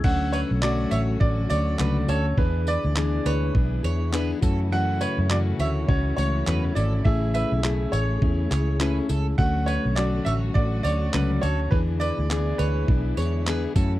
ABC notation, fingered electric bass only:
X:1
M:4/4
L:1/16
Q:"Swing 16ths" 1/4=103
K:Dlyd
V:1 name="Fingered electric bass" clef=bass
D,,3 B,,,3 A,,,2 A,,,2 D,,2 C,,2 D,,2 | E,,3 D,,3 D,,2 B,,,2 E,,4 F,,2- | F,,3 F,,3 D,,2 C,,2 C,,2 E,,2 G,,,2 | A,,,3 B,,,3 A,,,2 E,,2 C,,4 C,,2 |
D,,3 B,,,3 A,,,2 A,,,2 D,,2 C,,2 D,,2 | E,,3 D,,3 D,,2 B,,,2 E,,4 F,,2 |]